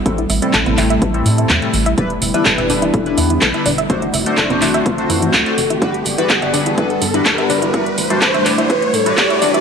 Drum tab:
HH |xxoxxxoxxxoxxxox|xxoxxxoxxxoxxxox|xxoxxxoxxxoxxxox|xxoxxxoxxxoxxxox|
CP |----x-x-----x---|----x-------x---|----x-x-----x---|----x-------x---|
BD |o---o---o---o---|o---o---o---o---|o---o---o---o---|o---o---o---o---|

HH |xxoxxxoxxxoxxxox|
CP |----x-x-----x---|
BD |o---o---o---o---|